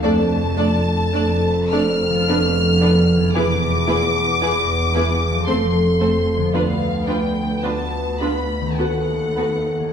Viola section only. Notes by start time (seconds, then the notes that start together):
0.02 A3 D4
0.56 A3 D4
1.13 A3 D4
1.72 A3 D4
2.29 B3 D4
2.81 B3 D4
3.35 B3 E4
3.87 B3 E4
4.42 B3 E4
4.95 B3 E4
5.47 A3 C4
6.00 A3 C4
6.53 B3 D4
7.07 B3 D4
7.63 B3 D4
8.21 B3 D4
8.78 B3 F#4
9.37 B3 F#4